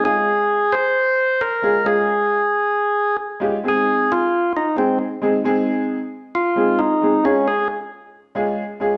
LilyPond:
<<
  \new Staff \with { instrumentName = "Tonewheel organ" } { \time 4/4 \key aes \major \tempo 4 = 134 aes'4. c''4. bes'4 | aes'2. r4 | aes'4 f'4 ees'8 c'8 r4 | r2 f'4 ees'4 |
des'8 aes'8 r2. | }
  \new Staff \with { instrumentName = "Upright piano" } { \time 4/4 \key aes \major <aes des' f' aes'>4 r2 r8 <aes des' f' aes'>8 | <aes des' f' aes'>4 r2 r8 <aes des' f' g'>8 | <aes c' ees' aes'>4 r4. <aes c' ees' aes'>8 r8 <aes c' ees' aes'>8 | <aes c' ees' aes'>4 r4. <aes c' ees' aes'>8 r8 <aes c' ees' aes'>8 |
<aes des' f' aes'>4 r4. <aes des' f' aes'>8 r8 <aes des' f' aes'>8 | }
>>